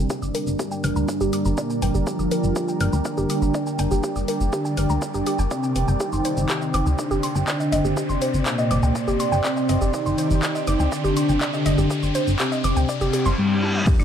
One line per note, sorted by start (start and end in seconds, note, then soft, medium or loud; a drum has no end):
0.00 0.49 C3 medium
0.00 5.96 G3 medium
0.00 0.50 C4 loud
0.00 6.00 D4 medium
0.00 5.96 A#4 medium
0.00 7.19 A#4 medium
0.00 9.90 D5 medium
0.00 13.38 G5 medium
0.00 7.87 A#5 medium
0.00 riser medium
0.10 0.16 G4 medium
0.10 kick loud
0.10 shaker medium
0.22 0.31 G1 medium
0.22 0.32 D6 medium
0.22 shaker soft
0.35 0.46 A#4 medium
0.35 open hi-hat loud
0.35 shaker soft
0.47 0.56 G1 medium
0.47 shaker soft
0.59 1.48 G2 medium
0.59 1.48 G3 medium
0.59 0.65 G4 medium
0.59 kick loud
0.59 shaker medium
0.71 0.81 G5 medium
0.71 shaker soft
0.84 0.92 G1 medium
0.84 0.90 F6 loud
0.84 open hi-hat medium
0.84 low conga medium
0.84 shaker soft
0.96 1.05 D2 medium
0.96 1.02 A#5 medium
0.96 shaker soft
1.08 1.20 D5 medium
1.08 kick loud
1.08 shaker medium
1.21 1.29 G1 medium
1.21 1.30 G4 loud
1.21 shaker soft
1.33 1.39 D6 medium
1.33 open hi-hat loud
1.33 shaker medium
1.45 1.54 G1 medium
1.45 1.55 A#5 medium
1.45 shaker soft
1.58 2.03 A#2 medium
1.58 2.03 A#3 loud
1.58 1.67 D5 loud
1.58 kick loud
1.58 shaker medium
1.70 1.80 G5 medium
1.70 shaker soft
1.82 1.91 G1 medium
1.82 1.92 G5 loud
1.82 open hi-hat loud
1.82 low conga medium
1.82 shaker medium
1.94 2.03 G1 medium
1.94 2.06 G4 medium
1.94 shaker soft
2.07 2.95 F3 medium
2.07 2.95 F4 loud
2.07 2.13 G4 medium
2.07 kick loud
2.07 shaker medium
2.19 2.28 G1 medium
2.19 2.29 D6 medium
2.19 shaker soft
2.31 2.43 A#4 medium
2.31 open hi-hat loud
2.31 shaker medium
2.44 2.52 G1 medium
2.44 shaker soft
2.56 2.62 G4 medium
2.56 kick loud
2.56 shaker medium
2.68 2.78 G5 medium
2.68 shaker soft
2.80 2.89 G1 medium
2.80 2.86 F6 loud
2.80 open hi-hat loud
2.80 low conga medium
2.80 shaker soft
2.93 3.01 D2 medium
2.93 2.99 A#5 medium
2.93 shaker soft
3.05 4.43 D3 medium
3.05 4.43 D4 loud
3.05 3.17 D5 medium
3.05 kick loud
3.05 shaker medium
3.17 3.26 G1 medium
3.17 3.27 G4 loud
3.17 shaker soft
3.30 3.36 D6 medium
3.30 open hi-hat loud
3.30 shaker medium
3.42 3.51 G1 medium
3.42 3.52 A#5 medium
3.42 shaker soft
3.54 3.64 D5 loud
3.54 kick loud
3.54 shaker medium
3.67 3.76 G5 medium
3.67 shaker soft
3.79 3.87 G1 medium
3.79 3.89 G5 loud
3.79 open hi-hat loud
3.79 shaker medium
3.91 4.00 G1 medium
3.91 4.02 G4 medium
3.91 shaker soft
4.04 4.09 G4 medium
4.04 kick loud
4.04 shaker medium
4.16 4.24 G1 medium
4.16 4.25 D6 medium
4.16 shaker soft
4.28 4.40 A#4 medium
4.28 open hi-hat loud
4.28 shaker medium
4.40 4.49 G1 medium
4.40 shaker soft
4.53 5.41 D3 medium
4.53 5.41 D4 loud
4.53 4.59 G4 medium
4.53 kick loud
4.53 shaker medium
4.65 4.75 G5 medium
4.65 shaker soft
4.77 4.86 G1 medium
4.77 4.83 F6 loud
4.77 open hi-hat loud
4.77 low conga medium
4.77 shaker soft
4.90 4.98 D2 medium
4.90 4.95 A#5 medium
4.90 shaker soft
5.02 5.14 D5 medium
5.02 kick loud
5.02 shaker medium
5.14 5.23 G1 medium
5.14 5.24 G4 medium
5.14 shaker soft
5.26 5.36 G4 loud
5.26 open hi-hat loud
5.26 shaker medium
5.39 5.47 G1 medium
5.39 5.51 G5 loud
5.39 shaker soft
5.51 5.96 C3 medium
5.51 5.96 C4 medium
5.51 5.61 D5 medium
5.51 kick loud
5.51 shaker medium
5.63 5.73 G5 medium
5.63 shaker soft
5.76 5.84 F1 medium
5.76 open hi-hat loud
5.76 low conga medium
5.76 shaker medium
5.88 5.97 G1 medium
5.88 5.94 G5 medium
5.88 shaker soft
6.00 13.34 C3 medium
6.00 6.89 D#3 medium
6.00 13.34 C4 medium
6.00 6.89 D#4 loud
6.00 6.06 G4 medium
6.00 kick loud
6.00 shaker medium
6.13 6.21 G1 medium
6.13 6.22 C6 medium
6.13 shaker soft
6.25 6.37 C5 medium
6.25 open hi-hat loud
6.25 shaker medium
6.36 6.46 G1 medium
6.36 13.38 D5 medium
6.36 shaker soft
6.49 6.55 G4 medium
6.49 kick loud
6.49 clap loud
6.49 shaker medium
6.62 6.71 D#5 medium
6.62 shaker soft
6.74 6.83 G1 medium
6.74 6.80 D6 loud
6.74 open hi-hat medium
6.74 low conga medium
6.74 shaker soft
6.86 6.95 D2 medium
6.86 6.92 G5 medium
6.86 shaker soft
6.96 8.36 D3 medium
6.96 8.36 D4 loud
6.96 7.10 D5 medium
6.96 13.38 C6 medium
6.96 kick loud
6.96 shaker medium
7.11 7.20 G1 medium
7.11 7.21 G4 loud
7.11 shaker soft
7.23 7.29 C6 medium
7.23 open hi-hat loud
7.23 shaker medium
7.35 7.44 G1 medium
7.35 7.45 G5 medium
7.35 shaker soft
7.48 7.57 D5 loud
7.48 kick loud
7.48 clap loud
7.48 shaker medium
7.60 7.70 D#5 medium
7.60 shaker soft
7.72 7.81 G1 medium
7.72 7.82 D#5 loud
7.72 open hi-hat loud
7.72 shaker medium
7.85 7.93 G1 medium
7.85 7.96 G4 medium
7.85 shaker soft
7.97 8.03 G4 medium
7.97 kick loud
7.97 shaker medium
8.09 8.18 G1 medium
8.09 8.19 C6 medium
8.09 shaker soft
8.22 8.33 C5 medium
8.22 open hi-hat loud
8.22 shaker medium
8.34 8.42 G1 medium
8.34 shaker soft
8.46 9.35 A#2 medium
8.46 9.35 A#3 loud
8.46 8.52 G4 medium
8.46 kick loud
8.46 clap loud
8.46 shaker medium
8.58 8.68 D#5 medium
8.58 shaker soft
8.71 8.79 G1 medium
8.71 8.77 D6 loud
8.71 open hi-hat loud
8.71 low conga medium
8.71 shaker medium
8.83 8.92 D2 medium
8.83 8.89 G5 medium
8.83 shaker soft
8.95 9.07 D5 medium
8.95 kick loud
8.95 shaker medium
9.08 9.16 G1 medium
9.08 9.17 G4 loud
9.08 shaker soft
9.20 9.26 C6 medium
9.20 open hi-hat loud
9.20 shaker medium
9.32 9.41 G1 medium
9.32 9.42 G5 medium
9.32 shaker soft
9.44 9.90 C3 medium
9.44 9.90 C4 medium
9.44 9.54 D5 loud
9.44 kick loud
9.44 clap loud
9.44 shaker medium
9.57 9.66 D#5 medium
9.57 shaker soft
9.69 9.78 G1 medium
9.69 9.79 D#5 loud
9.69 open hi-hat loud
9.69 low conga medium
9.69 shaker medium
9.81 9.90 G1 medium
9.81 9.92 G4 medium
9.81 shaker soft
9.94 10.82 D#3 medium
9.94 10.82 D#4 loud
9.94 9.99 G4 medium
9.94 13.35 G4 medium
9.94 kick loud
9.94 shaker medium
10.06 10.15 G1 medium
10.06 10.16 C6 medium
10.06 shaker soft
10.18 10.30 C5 medium
10.18 open hi-hat loud
10.18 shaker medium
10.31 10.39 G1 medium
10.31 shaker soft
10.43 10.49 G4 medium
10.43 kick loud
10.43 clap loud
10.43 shaker medium
10.55 10.65 D#5 medium
10.55 shaker soft
10.67 10.76 G1 medium
10.67 10.73 D6 loud
10.67 open hi-hat loud
10.67 low conga medium
10.67 shaker medium
10.80 10.88 D2 medium
10.80 10.86 G5 medium
10.80 shaker soft
10.92 12.30 D3 medium
10.92 12.30 D4 loud
10.92 11.04 D5 medium
10.92 kick loud
10.92 shaker medium
11.04 11.13 G1 medium
11.04 11.14 G4 loud
11.04 shaker soft
11.17 11.22 C6 medium
11.17 open hi-hat loud
11.17 shaker medium
11.29 11.38 G1 medium
11.29 11.39 G5 medium
11.29 shaker soft
11.41 11.51 D5 loud
11.41 kick loud
11.41 clap loud
11.41 shaker medium
11.54 11.63 D#5 medium
11.54 shaker soft
11.66 11.74 G1 medium
11.66 11.75 D#5 loud
11.66 open hi-hat loud
11.66 shaker medium
11.78 11.87 G1 medium
11.78 11.89 G4 medium
11.78 shaker soft
11.90 11.96 G4 medium
11.90 kick loud
11.90 shaker medium
12.03 12.11 G1 medium
12.03 12.12 C6 medium
12.03 shaker soft
12.15 12.27 C5 medium
12.15 open hi-hat loud
12.15 shaker medium
12.27 12.36 G1 medium
12.27 shaker soft
12.40 13.28 C3 medium
12.40 13.28 C4 loud
12.40 12.45 G4 medium
12.40 kick loud
12.40 clap loud
12.40 shaker medium
12.52 12.62 D#5 medium
12.52 shaker soft
12.64 12.73 G1 medium
12.64 12.70 D6 loud
12.64 open hi-hat loud
12.64 low conga medium
12.64 shaker medium
12.76 12.85 D2 medium
12.76 12.82 G5 medium
12.76 shaker medium
12.89 13.01 D5 medium
12.89 kick loud
12.89 reverse cymbal medium
12.89 shaker medium
13.01 13.10 G1 medium
13.01 13.11 G4 loud
13.01 shaker soft
13.13 13.23 G4 medium
13.13 open hi-hat loud
13.13 shaker medium
13.26 13.34 G1 medium
13.26 13.31 C6 loud
13.26 shaker soft
13.38 13.83 G2 medium
13.38 13.83 G3 loud
13.63 high tom medium
13.75 mid tom medium
13.87 14.04 D3 medium
13.87 14.04 G3 medium
13.87 14.04 D4 medium
13.87 14.04 D4 loud
13.87 13.93 G4 medium
13.87 14.04 A#4 medium
13.87 14.04 D5 loud
13.87 kick loud
13.87 crash loud
13.87 impact medium
13.87 shaker medium
13.99 14.04 G1 medium
13.99 14.04 D6 medium
13.99 claves soft
13.99 shaker soft